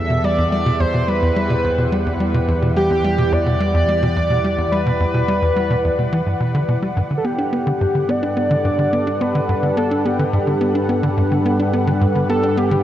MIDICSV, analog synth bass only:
0, 0, Header, 1, 2, 480
1, 0, Start_track
1, 0, Tempo, 560748
1, 204, Time_signature, 4, 2, 24, 8
1, 10984, End_track
2, 0, Start_track
2, 0, Title_t, "Analog synth bass"
2, 0, Program_c, 0, 38
2, 85, Note_on_c, 0, 47, 72
2, 165, Note_off_c, 0, 47, 0
2, 206, Note_on_c, 0, 55, 81
2, 319, Note_off_c, 0, 55, 0
2, 327, Note_on_c, 0, 40, 98
2, 405, Note_off_c, 0, 40, 0
2, 447, Note_on_c, 0, 55, 73
2, 559, Note_off_c, 0, 55, 0
2, 566, Note_on_c, 0, 47, 96
2, 613, Note_off_c, 0, 47, 0
2, 686, Note_on_c, 0, 40, 99
2, 733, Note_off_c, 0, 40, 0
2, 807, Note_on_c, 0, 47, 75
2, 886, Note_off_c, 0, 47, 0
2, 927, Note_on_c, 0, 55, 76
2, 1039, Note_off_c, 0, 55, 0
2, 1048, Note_on_c, 0, 40, 98
2, 1126, Note_off_c, 0, 40, 0
2, 1168, Note_on_c, 0, 55, 79
2, 1280, Note_off_c, 0, 55, 0
2, 1286, Note_on_c, 0, 47, 97
2, 1333, Note_off_c, 0, 47, 0
2, 1407, Note_on_c, 0, 40, 99
2, 1453, Note_off_c, 0, 40, 0
2, 1527, Note_on_c, 0, 47, 71
2, 1605, Note_off_c, 0, 47, 0
2, 1647, Note_on_c, 0, 55, 81
2, 1759, Note_off_c, 0, 55, 0
2, 1768, Note_on_c, 0, 40, 95
2, 1846, Note_off_c, 0, 40, 0
2, 1886, Note_on_c, 0, 55, 72
2, 1999, Note_off_c, 0, 55, 0
2, 2005, Note_on_c, 0, 47, 98
2, 2053, Note_off_c, 0, 47, 0
2, 2124, Note_on_c, 0, 40, 102
2, 2172, Note_off_c, 0, 40, 0
2, 2244, Note_on_c, 0, 47, 75
2, 2324, Note_off_c, 0, 47, 0
2, 2365, Note_on_c, 0, 55, 74
2, 2478, Note_off_c, 0, 55, 0
2, 2484, Note_on_c, 0, 40, 102
2, 2564, Note_off_c, 0, 40, 0
2, 2604, Note_on_c, 0, 55, 85
2, 2718, Note_off_c, 0, 55, 0
2, 2722, Note_on_c, 0, 47, 103
2, 2771, Note_off_c, 0, 47, 0
2, 2843, Note_on_c, 0, 40, 98
2, 2891, Note_off_c, 0, 40, 0
2, 2963, Note_on_c, 0, 47, 74
2, 3044, Note_off_c, 0, 47, 0
2, 3084, Note_on_c, 0, 55, 83
2, 3198, Note_off_c, 0, 55, 0
2, 3204, Note_on_c, 0, 40, 99
2, 3284, Note_off_c, 0, 40, 0
2, 3325, Note_on_c, 0, 55, 75
2, 3438, Note_off_c, 0, 55, 0
2, 3446, Note_on_c, 0, 47, 96
2, 3493, Note_off_c, 0, 47, 0
2, 3563, Note_on_c, 0, 40, 97
2, 3612, Note_off_c, 0, 40, 0
2, 3683, Note_on_c, 0, 47, 74
2, 3763, Note_off_c, 0, 47, 0
2, 3805, Note_on_c, 0, 55, 71
2, 3918, Note_off_c, 0, 55, 0
2, 3922, Note_on_c, 0, 40, 90
2, 4003, Note_off_c, 0, 40, 0
2, 4043, Note_on_c, 0, 55, 79
2, 4157, Note_off_c, 0, 55, 0
2, 4163, Note_on_c, 0, 47, 95
2, 4212, Note_off_c, 0, 47, 0
2, 4282, Note_on_c, 0, 40, 99
2, 4331, Note_off_c, 0, 40, 0
2, 4402, Note_on_c, 0, 47, 78
2, 4483, Note_off_c, 0, 47, 0
2, 4523, Note_on_c, 0, 55, 85
2, 4637, Note_off_c, 0, 55, 0
2, 4642, Note_on_c, 0, 40, 99
2, 4723, Note_off_c, 0, 40, 0
2, 4764, Note_on_c, 0, 55, 78
2, 4878, Note_off_c, 0, 55, 0
2, 4882, Note_on_c, 0, 47, 95
2, 4931, Note_off_c, 0, 47, 0
2, 5003, Note_on_c, 0, 40, 99
2, 5051, Note_off_c, 0, 40, 0
2, 5123, Note_on_c, 0, 47, 71
2, 5204, Note_off_c, 0, 47, 0
2, 5243, Note_on_c, 0, 52, 100
2, 5323, Note_off_c, 0, 52, 0
2, 5362, Note_on_c, 0, 43, 74
2, 5443, Note_off_c, 0, 43, 0
2, 5481, Note_on_c, 0, 47, 81
2, 5596, Note_off_c, 0, 47, 0
2, 5603, Note_on_c, 0, 50, 101
2, 5684, Note_off_c, 0, 50, 0
2, 5722, Note_on_c, 0, 47, 95
2, 5803, Note_off_c, 0, 47, 0
2, 5841, Note_on_c, 0, 55, 72
2, 5923, Note_off_c, 0, 55, 0
2, 5962, Note_on_c, 0, 43, 102
2, 6011, Note_off_c, 0, 43, 0
2, 6083, Note_on_c, 0, 50, 71
2, 6164, Note_off_c, 0, 50, 0
2, 6202, Note_on_c, 0, 59, 75
2, 6317, Note_off_c, 0, 59, 0
2, 6321, Note_on_c, 0, 62, 75
2, 6436, Note_off_c, 0, 62, 0
2, 6442, Note_on_c, 0, 59, 86
2, 6557, Note_off_c, 0, 59, 0
2, 6562, Note_on_c, 0, 50, 100
2, 6611, Note_off_c, 0, 50, 0
2, 6682, Note_on_c, 0, 43, 98
2, 6731, Note_off_c, 0, 43, 0
2, 6801, Note_on_c, 0, 50, 71
2, 6883, Note_off_c, 0, 50, 0
2, 6922, Note_on_c, 0, 59, 84
2, 7037, Note_off_c, 0, 59, 0
2, 7041, Note_on_c, 0, 62, 74
2, 7156, Note_off_c, 0, 62, 0
2, 7162, Note_on_c, 0, 59, 74
2, 7277, Note_off_c, 0, 59, 0
2, 7281, Note_on_c, 0, 50, 103
2, 7331, Note_off_c, 0, 50, 0
2, 7402, Note_on_c, 0, 43, 102
2, 7451, Note_off_c, 0, 43, 0
2, 7522, Note_on_c, 0, 50, 77
2, 7603, Note_off_c, 0, 50, 0
2, 7643, Note_on_c, 0, 59, 74
2, 7757, Note_off_c, 0, 59, 0
2, 7764, Note_on_c, 0, 62, 69
2, 7878, Note_off_c, 0, 62, 0
2, 7884, Note_on_c, 0, 59, 78
2, 7998, Note_off_c, 0, 59, 0
2, 8005, Note_on_c, 0, 50, 97
2, 8052, Note_off_c, 0, 50, 0
2, 8124, Note_on_c, 0, 43, 101
2, 8172, Note_off_c, 0, 43, 0
2, 8244, Note_on_c, 0, 50, 73
2, 8324, Note_off_c, 0, 50, 0
2, 8365, Note_on_c, 0, 59, 85
2, 8478, Note_off_c, 0, 59, 0
2, 8485, Note_on_c, 0, 62, 76
2, 8598, Note_off_c, 0, 62, 0
2, 8605, Note_on_c, 0, 59, 79
2, 8718, Note_off_c, 0, 59, 0
2, 8723, Note_on_c, 0, 50, 93
2, 8772, Note_off_c, 0, 50, 0
2, 8842, Note_on_c, 0, 43, 101
2, 8891, Note_off_c, 0, 43, 0
2, 8963, Note_on_c, 0, 50, 74
2, 9044, Note_off_c, 0, 50, 0
2, 9083, Note_on_c, 0, 59, 77
2, 9197, Note_off_c, 0, 59, 0
2, 9204, Note_on_c, 0, 62, 72
2, 9318, Note_off_c, 0, 62, 0
2, 9324, Note_on_c, 0, 59, 78
2, 9438, Note_off_c, 0, 59, 0
2, 9444, Note_on_c, 0, 50, 100
2, 9492, Note_off_c, 0, 50, 0
2, 9565, Note_on_c, 0, 43, 95
2, 9613, Note_off_c, 0, 43, 0
2, 9686, Note_on_c, 0, 50, 73
2, 9765, Note_off_c, 0, 50, 0
2, 9806, Note_on_c, 0, 59, 82
2, 9919, Note_off_c, 0, 59, 0
2, 9925, Note_on_c, 0, 62, 75
2, 10038, Note_off_c, 0, 62, 0
2, 10044, Note_on_c, 0, 59, 76
2, 10158, Note_off_c, 0, 59, 0
2, 10164, Note_on_c, 0, 50, 94
2, 10212, Note_off_c, 0, 50, 0
2, 10283, Note_on_c, 0, 43, 105
2, 10331, Note_off_c, 0, 43, 0
2, 10404, Note_on_c, 0, 50, 73
2, 10484, Note_off_c, 0, 50, 0
2, 10525, Note_on_c, 0, 59, 77
2, 10638, Note_off_c, 0, 59, 0
2, 10643, Note_on_c, 0, 62, 71
2, 10757, Note_off_c, 0, 62, 0
2, 10764, Note_on_c, 0, 59, 84
2, 10878, Note_off_c, 0, 59, 0
2, 10882, Note_on_c, 0, 50, 100
2, 10931, Note_off_c, 0, 50, 0
2, 10984, End_track
0, 0, End_of_file